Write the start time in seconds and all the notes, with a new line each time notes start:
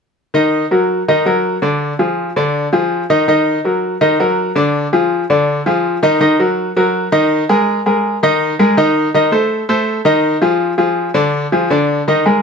0.34 D#3 D#4 D#5
0.71 F#3 F#4 A#4
1.08 D#3 D#4 D#5
1.26 F#3 F#4 A#4
1.62 D3 D4 D5
1.99 F3 F4 G#4
2.36 D3 D4 D5
2.73 F3 F4 G#4
3.10 D#3 D#4 D#5
3.28 D#3 D#4 D#5
3.65 F#3 F#4 A#4
4.01 D#3 D#4 D#5
4.20 F#3 F#4 A#4
4.56 D3 D4 D5
4.93 F3 F4 G#4
5.30 D3 D4 D5
5.66 F3 F4 G#4
6.03 D#3 D#4 D#5
6.20 D#3 D#4 D#5
6.39 F#3 F#4 A#4
6.76 F#3 F#4 A#4
7.12 D#3 D#4 D#5
7.49 G#3 G#4 A#4
7.86 G#3 G#4 A#4
8.23 D#3 D#4 D#5
8.59 G#3 G#4 A#4
8.77 D#3 D#4 D#5
9.14 D#3 D#4 D#5
9.32 A3 A4 C5
9.69 A3 A4 C5
10.05 D#3 D#4 D#5
10.42 F3 F4 G#4
10.78 F3 F4 G#4
11.14 D3 D4 D5
11.52 F3 F4 G#4
11.70 D3 D4 D5
12.08 D#3 D#4 D#5
12.26 G#3 G#4 A#4